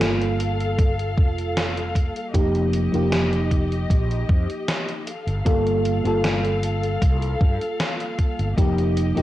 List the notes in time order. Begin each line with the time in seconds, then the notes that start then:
Already playing: G1 G3 A#3 F4 A4 F5
0.01 snare, closed hi-hat
0.21 closed hi-hat
0.40 closed hi-hat
0.60 closed hi-hat
0.79 kick, closed hi-hat
0.99 closed hi-hat
1.17 F1, kick
1.38 closed hi-hat
1.57 snare, closed hi-hat
1.77 closed hi-hat
1.95 kick, closed hi-hat
2.16 closed hi-hat
2.34 F1 F3 A#3 D#4 G4 D#5, kick, closed hi-hat
2.55 closed hi-hat
2.73 closed hi-hat
2.92 F1 F3 A#3 D#4 G4, closed hi-hat
3.12 snare, closed hi-hat
3.33 closed hi-hat
3.51 kick, closed hi-hat
3.72 closed hi-hat
3.90 A#1, kick, closed hi-hat
4.11 closed hi-hat
4.29 F2, kick
4.50 closed hi-hat
4.68 snare, closed hi-hat
4.89 closed hi-hat
5.07 A4 F5, closed hi-hat
5.27 G1, closed hi-hat
5.45 G1 G3 A#3 F4 A4, kick, closed hi-hat
5.67 closed hi-hat
5.85 closed hi-hat
6.04 G1 G3 A#3 F4 A4, closed hi-hat
6.24 snare, closed hi-hat
6.45 closed hi-hat
6.63 closed hi-hat
6.83 closed hi-hat
7.02 C2, kick, closed hi-hat
7.22 closed hi-hat
7.41 G2, kick
7.61 closed hi-hat
7.80 snare, closed hi-hat
8.00 closed hi-hat
8.19 kick, closed hi-hat
8.39 G1, closed hi-hat
8.57 F1 F3 A#3 D#4 G4 D#5, kick, closed hi-hat
8.78 closed hi-hat
8.97 closed hi-hat
9.15 F1 F3 A#3 D#4 G4, closed hi-hat